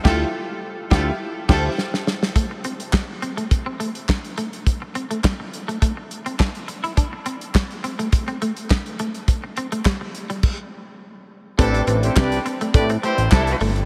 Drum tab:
CC |x---------x-----|----------------|----------------|----------------|
HH |----------------|x-xx--xxx-xx-xxx|x-xx--xxx-xx-xxx|x-xx-xxxxxxx-xxx|
CP |----------------|----x-------x---|----x-------x---|----x-------x---|
SD |o-----o---o-oooo|----o-------o---|----o-------o---|----o-------o---|
BD |o-----o---o-----|o---o---o---o---|o---o---o---o---|o---o---o---o---|

CC |--------x-------|----------------|
HH |x-xx--xx--------|xxxx-xxxxxxx-xox|
CP |----x-----------|----x-------x---|
SD |----o-----------|----o-------o---|
BD |o---o---o-------|o---o---o---o---|